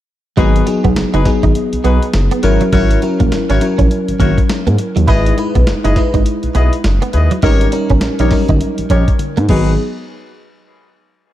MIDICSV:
0, 0, Header, 1, 7, 480
1, 0, Start_track
1, 0, Key_signature, 5, "minor"
1, 0, Tempo, 588235
1, 307, Time_signature, 4, 2, 24, 8
1, 9246, End_track
2, 0, Start_track
2, 0, Title_t, "Horn section"
2, 0, Program_c, 0, 61
2, 301, Note_on_c, 0, 63, 88
2, 302, Note_on_c, 0, 66, 80
2, 305, Note_on_c, 0, 68, 88
2, 307, Note_on_c, 0, 71, 96
2, 529, Note_off_c, 0, 63, 0
2, 530, Note_off_c, 0, 66, 0
2, 531, Note_off_c, 0, 68, 0
2, 532, Note_off_c, 0, 71, 0
2, 928, Note_on_c, 0, 63, 74
2, 930, Note_on_c, 0, 66, 67
2, 931, Note_on_c, 0, 68, 72
2, 932, Note_on_c, 0, 71, 84
2, 1055, Note_off_c, 0, 63, 0
2, 1056, Note_off_c, 0, 66, 0
2, 1057, Note_off_c, 0, 68, 0
2, 1057, Note_off_c, 0, 71, 0
2, 1505, Note_on_c, 0, 63, 80
2, 1505, Note_on_c, 0, 66, 66
2, 1507, Note_on_c, 0, 68, 71
2, 1509, Note_on_c, 0, 71, 81
2, 1671, Note_off_c, 0, 63, 0
2, 1671, Note_off_c, 0, 66, 0
2, 1672, Note_off_c, 0, 68, 0
2, 1673, Note_off_c, 0, 71, 0
2, 1982, Note_on_c, 0, 64, 71
2, 1983, Note_on_c, 0, 66, 63
2, 1986, Note_on_c, 0, 70, 72
2, 1987, Note_on_c, 0, 73, 87
2, 2149, Note_off_c, 0, 64, 0
2, 2150, Note_off_c, 0, 66, 0
2, 2151, Note_off_c, 0, 70, 0
2, 2152, Note_off_c, 0, 73, 0
2, 2224, Note_on_c, 0, 64, 88
2, 2226, Note_on_c, 0, 66, 87
2, 2226, Note_on_c, 0, 70, 83
2, 2228, Note_on_c, 0, 73, 100
2, 2451, Note_off_c, 0, 64, 0
2, 2451, Note_off_c, 0, 66, 0
2, 2451, Note_off_c, 0, 70, 0
2, 2453, Note_off_c, 0, 73, 0
2, 2850, Note_on_c, 0, 64, 76
2, 2853, Note_on_c, 0, 66, 70
2, 2854, Note_on_c, 0, 70, 69
2, 2854, Note_on_c, 0, 73, 91
2, 2976, Note_off_c, 0, 64, 0
2, 2978, Note_off_c, 0, 66, 0
2, 2978, Note_off_c, 0, 70, 0
2, 2978, Note_off_c, 0, 73, 0
2, 3426, Note_on_c, 0, 64, 77
2, 3428, Note_on_c, 0, 66, 69
2, 3429, Note_on_c, 0, 70, 73
2, 3431, Note_on_c, 0, 73, 85
2, 3591, Note_off_c, 0, 64, 0
2, 3592, Note_off_c, 0, 66, 0
2, 3593, Note_off_c, 0, 70, 0
2, 3594, Note_off_c, 0, 73, 0
2, 4146, Note_on_c, 0, 64, 93
2, 4147, Note_on_c, 0, 68, 83
2, 4149, Note_on_c, 0, 71, 84
2, 4149, Note_on_c, 0, 75, 102
2, 4371, Note_off_c, 0, 64, 0
2, 4372, Note_off_c, 0, 68, 0
2, 4373, Note_off_c, 0, 71, 0
2, 4373, Note_off_c, 0, 75, 0
2, 4769, Note_on_c, 0, 64, 79
2, 4769, Note_on_c, 0, 68, 70
2, 4771, Note_on_c, 0, 71, 66
2, 4772, Note_on_c, 0, 75, 86
2, 4896, Note_off_c, 0, 64, 0
2, 4896, Note_off_c, 0, 68, 0
2, 4897, Note_off_c, 0, 71, 0
2, 4897, Note_off_c, 0, 75, 0
2, 5343, Note_on_c, 0, 64, 83
2, 5346, Note_on_c, 0, 68, 70
2, 5346, Note_on_c, 0, 71, 68
2, 5348, Note_on_c, 0, 75, 82
2, 5510, Note_off_c, 0, 64, 0
2, 5511, Note_off_c, 0, 68, 0
2, 5512, Note_off_c, 0, 71, 0
2, 5512, Note_off_c, 0, 75, 0
2, 5823, Note_on_c, 0, 64, 74
2, 5825, Note_on_c, 0, 68, 69
2, 5826, Note_on_c, 0, 71, 70
2, 5828, Note_on_c, 0, 75, 78
2, 5990, Note_off_c, 0, 64, 0
2, 5991, Note_off_c, 0, 68, 0
2, 5991, Note_off_c, 0, 71, 0
2, 5992, Note_off_c, 0, 75, 0
2, 6063, Note_on_c, 0, 63, 87
2, 6066, Note_on_c, 0, 67, 80
2, 6067, Note_on_c, 0, 73, 98
2, 6068, Note_on_c, 0, 70, 83
2, 6290, Note_off_c, 0, 63, 0
2, 6291, Note_off_c, 0, 67, 0
2, 6292, Note_off_c, 0, 70, 0
2, 6292, Note_off_c, 0, 73, 0
2, 6689, Note_on_c, 0, 63, 73
2, 6691, Note_on_c, 0, 67, 72
2, 6691, Note_on_c, 0, 70, 67
2, 6693, Note_on_c, 0, 73, 84
2, 6816, Note_off_c, 0, 63, 0
2, 6817, Note_off_c, 0, 67, 0
2, 6817, Note_off_c, 0, 70, 0
2, 6818, Note_off_c, 0, 73, 0
2, 7264, Note_on_c, 0, 63, 70
2, 7267, Note_on_c, 0, 67, 69
2, 7269, Note_on_c, 0, 70, 68
2, 7269, Note_on_c, 0, 73, 84
2, 7430, Note_off_c, 0, 63, 0
2, 7432, Note_off_c, 0, 67, 0
2, 7433, Note_off_c, 0, 70, 0
2, 7433, Note_off_c, 0, 73, 0
2, 7746, Note_on_c, 0, 63, 86
2, 7747, Note_on_c, 0, 66, 75
2, 7751, Note_on_c, 0, 68, 77
2, 7752, Note_on_c, 0, 71, 89
2, 7934, Note_off_c, 0, 63, 0
2, 7935, Note_off_c, 0, 66, 0
2, 7937, Note_off_c, 0, 68, 0
2, 7937, Note_off_c, 0, 71, 0
2, 9246, End_track
3, 0, Start_track
3, 0, Title_t, "FM electric piano"
3, 0, Program_c, 1, 5
3, 305, Note_on_c, 1, 54, 82
3, 308, Note_on_c, 1, 59, 77
3, 311, Note_on_c, 1, 63, 75
3, 314, Note_on_c, 1, 68, 86
3, 474, Control_c, 1, 64, 127
3, 503, Note_off_c, 1, 54, 0
3, 505, Note_off_c, 1, 59, 0
3, 506, Note_off_c, 1, 63, 0
3, 508, Note_off_c, 1, 68, 0
3, 545, Note_on_c, 1, 54, 82
3, 548, Note_on_c, 1, 59, 71
3, 552, Note_on_c, 1, 63, 76
3, 556, Note_on_c, 1, 68, 87
3, 940, Note_off_c, 1, 54, 0
3, 942, Note_off_c, 1, 59, 0
3, 944, Note_off_c, 1, 63, 0
3, 946, Note_off_c, 1, 68, 0
3, 1023, Note_on_c, 1, 54, 80
3, 1027, Note_on_c, 1, 59, 76
3, 1031, Note_on_c, 1, 63, 76
3, 1033, Note_on_c, 1, 68, 90
3, 1773, Note_off_c, 1, 54, 0
3, 1775, Note_off_c, 1, 59, 0
3, 1777, Note_off_c, 1, 63, 0
3, 1778, Note_off_c, 1, 68, 0
3, 1983, Note_on_c, 1, 54, 90
3, 1986, Note_on_c, 1, 61, 76
3, 1990, Note_on_c, 1, 64, 84
3, 1991, Note_on_c, 1, 70, 104
3, 1998, Control_c, 1, 64, 0
3, 2134, Control_c, 1, 64, 127
3, 2389, Note_off_c, 1, 54, 0
3, 2391, Note_off_c, 1, 61, 0
3, 2392, Note_off_c, 1, 64, 0
3, 2393, Note_off_c, 1, 70, 0
3, 2468, Note_on_c, 1, 54, 82
3, 2471, Note_on_c, 1, 61, 73
3, 2475, Note_on_c, 1, 64, 75
3, 2477, Note_on_c, 1, 70, 86
3, 2862, Note_off_c, 1, 54, 0
3, 2863, Note_off_c, 1, 61, 0
3, 2865, Note_off_c, 1, 64, 0
3, 2866, Note_off_c, 1, 70, 0
3, 2945, Note_on_c, 1, 54, 84
3, 2951, Note_on_c, 1, 61, 68
3, 2954, Note_on_c, 1, 64, 71
3, 2955, Note_on_c, 1, 70, 86
3, 3694, Note_off_c, 1, 54, 0
3, 3697, Note_off_c, 1, 61, 0
3, 3699, Note_off_c, 1, 64, 0
3, 3699, Note_off_c, 1, 70, 0
3, 4149, Note_on_c, 1, 56, 81
3, 4151, Note_on_c, 1, 63, 68
3, 4154, Note_on_c, 1, 64, 73
3, 4156, Control_c, 1, 64, 0
3, 4158, Note_on_c, 1, 71, 92
3, 4294, Control_c, 1, 64, 127
3, 4345, Note_off_c, 1, 56, 0
3, 4346, Note_off_c, 1, 63, 0
3, 4348, Note_off_c, 1, 64, 0
3, 4349, Note_off_c, 1, 71, 0
3, 4386, Note_on_c, 1, 56, 83
3, 4389, Note_on_c, 1, 63, 79
3, 4391, Note_on_c, 1, 64, 75
3, 4397, Note_on_c, 1, 71, 91
3, 4781, Note_off_c, 1, 56, 0
3, 4782, Note_off_c, 1, 63, 0
3, 4783, Note_off_c, 1, 64, 0
3, 4786, Note_off_c, 1, 71, 0
3, 4866, Note_on_c, 1, 56, 82
3, 4868, Note_on_c, 1, 63, 77
3, 4871, Note_on_c, 1, 64, 78
3, 4874, Note_on_c, 1, 71, 85
3, 5614, Note_off_c, 1, 56, 0
3, 5616, Note_off_c, 1, 63, 0
3, 5617, Note_off_c, 1, 64, 0
3, 5619, Note_off_c, 1, 71, 0
3, 6061, Note_on_c, 1, 55, 77
3, 6064, Note_on_c, 1, 61, 72
3, 6069, Note_on_c, 1, 63, 76
3, 6071, Note_on_c, 1, 70, 94
3, 6076, Control_c, 1, 64, 0
3, 6218, Control_c, 1, 64, 127
3, 6261, Note_off_c, 1, 55, 0
3, 6263, Note_off_c, 1, 61, 0
3, 6265, Note_off_c, 1, 63, 0
3, 6266, Note_off_c, 1, 70, 0
3, 6302, Note_on_c, 1, 55, 80
3, 6305, Note_on_c, 1, 61, 76
3, 6308, Note_on_c, 1, 63, 76
3, 6311, Note_on_c, 1, 70, 93
3, 6699, Note_off_c, 1, 55, 0
3, 6700, Note_off_c, 1, 61, 0
3, 6702, Note_off_c, 1, 63, 0
3, 6703, Note_off_c, 1, 70, 0
3, 6782, Note_on_c, 1, 54, 64
3, 6785, Note_on_c, 1, 61, 77
3, 6787, Note_on_c, 1, 63, 76
3, 6791, Note_on_c, 1, 70, 84
3, 6834, Note_on_c, 1, 55, 78
3, 6849, Note_off_c, 1, 54, 0
3, 7534, Note_off_c, 1, 61, 0
3, 7535, Note_off_c, 1, 63, 0
3, 7537, Note_off_c, 1, 70, 0
3, 7559, Note_off_c, 1, 55, 0
3, 7751, Note_on_c, 1, 63, 70
3, 7751, Note_on_c, 1, 68, 91
3, 7752, Note_on_c, 1, 54, 84
3, 7752, Note_on_c, 1, 59, 72
3, 7757, Control_c, 1, 64, 0
3, 7850, Control_c, 1, 64, 127
3, 7972, Note_off_c, 1, 63, 0
3, 7972, Note_off_c, 1, 68, 0
3, 7973, Note_off_c, 1, 54, 0
3, 7973, Note_off_c, 1, 59, 0
3, 7997, Control_c, 1, 64, 0
3, 9246, End_track
4, 0, Start_track
4, 0, Title_t, "Clean electric guitar"
4, 0, Program_c, 2, 27
4, 302, Note_on_c, 2, 56, 90
4, 404, Note_off_c, 2, 56, 0
4, 687, Note_on_c, 2, 59, 69
4, 754, Note_off_c, 2, 59, 0
4, 928, Note_on_c, 2, 63, 78
4, 995, Note_off_c, 2, 63, 0
4, 1169, Note_on_c, 2, 63, 82
4, 1236, Note_off_c, 2, 63, 0
4, 1503, Note_on_c, 2, 59, 75
4, 1605, Note_off_c, 2, 59, 0
4, 1889, Note_on_c, 2, 59, 78
4, 1956, Note_off_c, 2, 59, 0
4, 2130, Note_on_c, 2, 54, 74
4, 2197, Note_off_c, 2, 54, 0
4, 2226, Note_on_c, 2, 54, 93
4, 2327, Note_off_c, 2, 54, 0
4, 2610, Note_on_c, 2, 58, 69
4, 2677, Note_off_c, 2, 58, 0
4, 2854, Note_on_c, 2, 61, 71
4, 2919, Note_off_c, 2, 61, 0
4, 3088, Note_on_c, 2, 61, 80
4, 3155, Note_off_c, 2, 61, 0
4, 3424, Note_on_c, 2, 58, 82
4, 3525, Note_off_c, 2, 58, 0
4, 3809, Note_on_c, 2, 58, 77
4, 3876, Note_off_c, 2, 58, 0
4, 4046, Note_on_c, 2, 54, 73
4, 4114, Note_off_c, 2, 54, 0
4, 4141, Note_on_c, 2, 64, 93
4, 4243, Note_off_c, 2, 64, 0
4, 4531, Note_on_c, 2, 59, 71
4, 4597, Note_off_c, 2, 59, 0
4, 4769, Note_on_c, 2, 63, 74
4, 4836, Note_off_c, 2, 63, 0
4, 5010, Note_on_c, 2, 63, 78
4, 5077, Note_off_c, 2, 63, 0
4, 5343, Note_on_c, 2, 59, 78
4, 5445, Note_off_c, 2, 59, 0
4, 5728, Note_on_c, 2, 59, 79
4, 5795, Note_off_c, 2, 59, 0
4, 5967, Note_on_c, 2, 54, 73
4, 6034, Note_off_c, 2, 54, 0
4, 6062, Note_on_c, 2, 63, 92
4, 6164, Note_off_c, 2, 63, 0
4, 6449, Note_on_c, 2, 61, 75
4, 6516, Note_off_c, 2, 61, 0
4, 6690, Note_on_c, 2, 63, 76
4, 6756, Note_off_c, 2, 63, 0
4, 6929, Note_on_c, 2, 63, 80
4, 6996, Note_off_c, 2, 63, 0
4, 7267, Note_on_c, 2, 61, 80
4, 7368, Note_off_c, 2, 61, 0
4, 7648, Note_on_c, 2, 58, 82
4, 7715, Note_off_c, 2, 58, 0
4, 7746, Note_on_c, 2, 56, 84
4, 7890, Note_off_c, 2, 56, 0
4, 9246, End_track
5, 0, Start_track
5, 0, Title_t, "Analog synth bass"
5, 0, Program_c, 3, 38
5, 308, Note_on_c, 3, 32, 101
5, 503, Note_off_c, 3, 32, 0
5, 692, Note_on_c, 3, 35, 97
5, 769, Note_off_c, 3, 35, 0
5, 788, Note_on_c, 3, 30, 45
5, 846, Note_off_c, 3, 30, 0
5, 932, Note_on_c, 3, 30, 84
5, 1009, Note_off_c, 3, 30, 0
5, 1170, Note_on_c, 3, 32, 94
5, 1248, Note_off_c, 3, 32, 0
5, 1414, Note_on_c, 3, 35, 51
5, 1451, Note_off_c, 3, 35, 0
5, 1508, Note_on_c, 3, 35, 84
5, 1626, Note_off_c, 3, 35, 0
5, 1750, Note_on_c, 3, 30, 95
5, 1867, Note_off_c, 3, 30, 0
5, 1990, Note_on_c, 3, 32, 110
5, 2107, Note_off_c, 3, 32, 0
5, 2227, Note_on_c, 3, 32, 107
5, 2423, Note_off_c, 3, 32, 0
5, 2615, Note_on_c, 3, 34, 88
5, 2691, Note_off_c, 3, 34, 0
5, 2709, Note_on_c, 3, 32, 44
5, 2766, Note_off_c, 3, 32, 0
5, 2855, Note_on_c, 3, 32, 74
5, 2931, Note_off_c, 3, 32, 0
5, 3092, Note_on_c, 3, 34, 82
5, 3170, Note_off_c, 3, 34, 0
5, 3334, Note_on_c, 3, 32, 53
5, 3372, Note_off_c, 3, 32, 0
5, 3426, Note_on_c, 3, 32, 102
5, 3545, Note_off_c, 3, 32, 0
5, 3811, Note_on_c, 3, 44, 85
5, 3889, Note_off_c, 3, 44, 0
5, 4055, Note_on_c, 3, 39, 92
5, 4131, Note_off_c, 3, 39, 0
5, 4147, Note_on_c, 3, 32, 98
5, 4343, Note_off_c, 3, 32, 0
5, 4533, Note_on_c, 3, 35, 99
5, 4610, Note_off_c, 3, 35, 0
5, 4626, Note_on_c, 3, 30, 47
5, 4684, Note_off_c, 3, 30, 0
5, 4774, Note_on_c, 3, 30, 79
5, 4850, Note_off_c, 3, 30, 0
5, 5012, Note_on_c, 3, 32, 98
5, 5089, Note_off_c, 3, 32, 0
5, 5254, Note_on_c, 3, 35, 48
5, 5291, Note_off_c, 3, 35, 0
5, 5348, Note_on_c, 3, 35, 88
5, 5466, Note_off_c, 3, 35, 0
5, 5589, Note_on_c, 3, 30, 102
5, 5706, Note_off_c, 3, 30, 0
5, 5827, Note_on_c, 3, 39, 97
5, 5945, Note_off_c, 3, 39, 0
5, 6064, Note_on_c, 3, 32, 106
5, 6260, Note_off_c, 3, 32, 0
5, 6450, Note_on_c, 3, 31, 91
5, 6528, Note_off_c, 3, 31, 0
5, 6544, Note_on_c, 3, 34, 45
5, 6603, Note_off_c, 3, 34, 0
5, 6691, Note_on_c, 3, 34, 90
5, 6769, Note_off_c, 3, 34, 0
5, 6930, Note_on_c, 3, 31, 95
5, 7008, Note_off_c, 3, 31, 0
5, 7172, Note_on_c, 3, 34, 46
5, 7210, Note_off_c, 3, 34, 0
5, 7264, Note_on_c, 3, 34, 96
5, 7383, Note_off_c, 3, 34, 0
5, 7650, Note_on_c, 3, 44, 92
5, 7728, Note_off_c, 3, 44, 0
5, 7747, Note_on_c, 3, 32, 100
5, 7970, Note_off_c, 3, 32, 0
5, 9246, End_track
6, 0, Start_track
6, 0, Title_t, "Muted clean electric guitar strokes"
6, 541, Note_on_c, 9, 29, 42
6, 623, Note_off_c, 9, 29, 0
6, 1025, Note_on_c, 9, 29, 45
6, 1107, Note_off_c, 9, 29, 0
6, 1986, Note_on_c, 9, 29, 44
6, 2068, Note_off_c, 9, 29, 0
6, 2468, Note_on_c, 9, 29, 42
6, 2550, Note_off_c, 9, 29, 0
6, 2949, Note_on_c, 9, 29, 48
6, 3030, Note_off_c, 9, 29, 0
6, 3906, Note_on_c, 9, 29, 42
6, 3987, Note_off_c, 9, 29, 0
6, 4388, Note_on_c, 9, 29, 46
6, 4470, Note_off_c, 9, 29, 0
6, 4865, Note_on_c, 9, 29, 48
6, 4947, Note_off_c, 9, 29, 0
6, 5824, Note_on_c, 9, 29, 46
6, 5906, Note_off_c, 9, 29, 0
6, 6305, Note_on_c, 9, 29, 42
6, 6387, Note_off_c, 9, 29, 0
6, 6789, Note_on_c, 9, 29, 47
6, 6870, Note_off_c, 9, 29, 0
6, 9246, End_track
7, 0, Start_track
7, 0, Title_t, "Drums"
7, 305, Note_on_c, 9, 36, 113
7, 306, Note_on_c, 9, 42, 78
7, 387, Note_off_c, 9, 36, 0
7, 387, Note_off_c, 9, 42, 0
7, 455, Note_on_c, 9, 42, 54
7, 536, Note_off_c, 9, 42, 0
7, 544, Note_on_c, 9, 42, 65
7, 626, Note_off_c, 9, 42, 0
7, 690, Note_on_c, 9, 42, 42
7, 691, Note_on_c, 9, 36, 99
7, 771, Note_off_c, 9, 42, 0
7, 773, Note_off_c, 9, 36, 0
7, 785, Note_on_c, 9, 42, 77
7, 787, Note_on_c, 9, 38, 101
7, 867, Note_off_c, 9, 42, 0
7, 868, Note_off_c, 9, 38, 0
7, 928, Note_on_c, 9, 42, 50
7, 1010, Note_off_c, 9, 42, 0
7, 1024, Note_on_c, 9, 38, 63
7, 1024, Note_on_c, 9, 42, 74
7, 1026, Note_on_c, 9, 36, 77
7, 1105, Note_off_c, 9, 38, 0
7, 1106, Note_off_c, 9, 42, 0
7, 1107, Note_off_c, 9, 36, 0
7, 1168, Note_on_c, 9, 42, 49
7, 1170, Note_on_c, 9, 36, 86
7, 1249, Note_off_c, 9, 42, 0
7, 1251, Note_off_c, 9, 36, 0
7, 1266, Note_on_c, 9, 42, 79
7, 1348, Note_off_c, 9, 42, 0
7, 1409, Note_on_c, 9, 42, 53
7, 1491, Note_off_c, 9, 42, 0
7, 1506, Note_on_c, 9, 42, 73
7, 1587, Note_off_c, 9, 42, 0
7, 1652, Note_on_c, 9, 42, 51
7, 1734, Note_off_c, 9, 42, 0
7, 1742, Note_on_c, 9, 38, 103
7, 1742, Note_on_c, 9, 42, 78
7, 1823, Note_off_c, 9, 42, 0
7, 1824, Note_off_c, 9, 38, 0
7, 1887, Note_on_c, 9, 42, 56
7, 1969, Note_off_c, 9, 42, 0
7, 1982, Note_on_c, 9, 42, 74
7, 2063, Note_off_c, 9, 42, 0
7, 2127, Note_on_c, 9, 42, 59
7, 2209, Note_off_c, 9, 42, 0
7, 2224, Note_on_c, 9, 42, 84
7, 2226, Note_on_c, 9, 36, 102
7, 2306, Note_off_c, 9, 42, 0
7, 2307, Note_off_c, 9, 36, 0
7, 2371, Note_on_c, 9, 42, 57
7, 2453, Note_off_c, 9, 42, 0
7, 2466, Note_on_c, 9, 42, 65
7, 2547, Note_off_c, 9, 42, 0
7, 2610, Note_on_c, 9, 42, 45
7, 2613, Note_on_c, 9, 36, 100
7, 2692, Note_off_c, 9, 42, 0
7, 2695, Note_off_c, 9, 36, 0
7, 2708, Note_on_c, 9, 42, 76
7, 2709, Note_on_c, 9, 38, 99
7, 2790, Note_off_c, 9, 42, 0
7, 2791, Note_off_c, 9, 38, 0
7, 2853, Note_on_c, 9, 42, 49
7, 2934, Note_off_c, 9, 42, 0
7, 2947, Note_on_c, 9, 42, 76
7, 3029, Note_off_c, 9, 42, 0
7, 3091, Note_on_c, 9, 42, 53
7, 3092, Note_on_c, 9, 36, 83
7, 3172, Note_off_c, 9, 42, 0
7, 3173, Note_off_c, 9, 36, 0
7, 3190, Note_on_c, 9, 42, 79
7, 3272, Note_off_c, 9, 42, 0
7, 3333, Note_on_c, 9, 42, 52
7, 3414, Note_off_c, 9, 42, 0
7, 3425, Note_on_c, 9, 36, 89
7, 3429, Note_on_c, 9, 42, 72
7, 3506, Note_off_c, 9, 36, 0
7, 3510, Note_off_c, 9, 42, 0
7, 3572, Note_on_c, 9, 36, 97
7, 3575, Note_on_c, 9, 42, 57
7, 3653, Note_off_c, 9, 36, 0
7, 3656, Note_off_c, 9, 42, 0
7, 3667, Note_on_c, 9, 42, 81
7, 3668, Note_on_c, 9, 38, 110
7, 3749, Note_off_c, 9, 42, 0
7, 3750, Note_off_c, 9, 38, 0
7, 3811, Note_on_c, 9, 42, 53
7, 3893, Note_off_c, 9, 42, 0
7, 3904, Note_on_c, 9, 42, 76
7, 3986, Note_off_c, 9, 42, 0
7, 4053, Note_on_c, 9, 42, 56
7, 4134, Note_off_c, 9, 42, 0
7, 4143, Note_on_c, 9, 42, 82
7, 4146, Note_on_c, 9, 36, 110
7, 4225, Note_off_c, 9, 42, 0
7, 4228, Note_off_c, 9, 36, 0
7, 4295, Note_on_c, 9, 42, 58
7, 4377, Note_off_c, 9, 42, 0
7, 4388, Note_on_c, 9, 42, 66
7, 4470, Note_off_c, 9, 42, 0
7, 4531, Note_on_c, 9, 42, 47
7, 4533, Note_on_c, 9, 36, 95
7, 4613, Note_off_c, 9, 42, 0
7, 4614, Note_off_c, 9, 36, 0
7, 4626, Note_on_c, 9, 42, 70
7, 4627, Note_on_c, 9, 38, 106
7, 4708, Note_off_c, 9, 42, 0
7, 4709, Note_off_c, 9, 38, 0
7, 4771, Note_on_c, 9, 42, 54
7, 4852, Note_off_c, 9, 42, 0
7, 4864, Note_on_c, 9, 38, 66
7, 4864, Note_on_c, 9, 42, 69
7, 4867, Note_on_c, 9, 36, 79
7, 4946, Note_off_c, 9, 38, 0
7, 4946, Note_off_c, 9, 42, 0
7, 4948, Note_off_c, 9, 36, 0
7, 5009, Note_on_c, 9, 42, 52
7, 5011, Note_on_c, 9, 36, 87
7, 5091, Note_off_c, 9, 42, 0
7, 5092, Note_off_c, 9, 36, 0
7, 5106, Note_on_c, 9, 42, 80
7, 5188, Note_off_c, 9, 42, 0
7, 5246, Note_on_c, 9, 42, 51
7, 5328, Note_off_c, 9, 42, 0
7, 5343, Note_on_c, 9, 42, 67
7, 5425, Note_off_c, 9, 42, 0
7, 5490, Note_on_c, 9, 42, 51
7, 5571, Note_off_c, 9, 42, 0
7, 5583, Note_on_c, 9, 38, 115
7, 5583, Note_on_c, 9, 42, 80
7, 5664, Note_off_c, 9, 42, 0
7, 5665, Note_off_c, 9, 38, 0
7, 5729, Note_on_c, 9, 42, 52
7, 5810, Note_off_c, 9, 42, 0
7, 5820, Note_on_c, 9, 42, 77
7, 5902, Note_off_c, 9, 42, 0
7, 5965, Note_on_c, 9, 42, 57
7, 6047, Note_off_c, 9, 42, 0
7, 6058, Note_on_c, 9, 42, 82
7, 6063, Note_on_c, 9, 36, 109
7, 6139, Note_off_c, 9, 42, 0
7, 6144, Note_off_c, 9, 36, 0
7, 6210, Note_on_c, 9, 42, 55
7, 6291, Note_off_c, 9, 42, 0
7, 6300, Note_on_c, 9, 42, 69
7, 6381, Note_off_c, 9, 42, 0
7, 6443, Note_on_c, 9, 42, 43
7, 6449, Note_on_c, 9, 36, 99
7, 6525, Note_off_c, 9, 42, 0
7, 6531, Note_off_c, 9, 36, 0
7, 6536, Note_on_c, 9, 42, 79
7, 6537, Note_on_c, 9, 38, 93
7, 6617, Note_off_c, 9, 42, 0
7, 6618, Note_off_c, 9, 38, 0
7, 6683, Note_on_c, 9, 42, 52
7, 6764, Note_off_c, 9, 42, 0
7, 6778, Note_on_c, 9, 38, 65
7, 6779, Note_on_c, 9, 46, 75
7, 6784, Note_on_c, 9, 36, 84
7, 6860, Note_off_c, 9, 38, 0
7, 6860, Note_off_c, 9, 46, 0
7, 6866, Note_off_c, 9, 36, 0
7, 6924, Note_on_c, 9, 42, 50
7, 6928, Note_on_c, 9, 36, 90
7, 7006, Note_off_c, 9, 42, 0
7, 7010, Note_off_c, 9, 36, 0
7, 7023, Note_on_c, 9, 42, 75
7, 7104, Note_off_c, 9, 42, 0
7, 7164, Note_on_c, 9, 42, 54
7, 7245, Note_off_c, 9, 42, 0
7, 7262, Note_on_c, 9, 36, 81
7, 7262, Note_on_c, 9, 42, 76
7, 7343, Note_off_c, 9, 42, 0
7, 7344, Note_off_c, 9, 36, 0
7, 7408, Note_on_c, 9, 42, 57
7, 7409, Note_on_c, 9, 36, 98
7, 7490, Note_off_c, 9, 42, 0
7, 7491, Note_off_c, 9, 36, 0
7, 7501, Note_on_c, 9, 42, 81
7, 7501, Note_on_c, 9, 48, 55
7, 7583, Note_off_c, 9, 42, 0
7, 7583, Note_off_c, 9, 48, 0
7, 7648, Note_on_c, 9, 42, 56
7, 7729, Note_off_c, 9, 42, 0
7, 7741, Note_on_c, 9, 49, 86
7, 7745, Note_on_c, 9, 36, 101
7, 7822, Note_off_c, 9, 49, 0
7, 7826, Note_off_c, 9, 36, 0
7, 9246, End_track
0, 0, End_of_file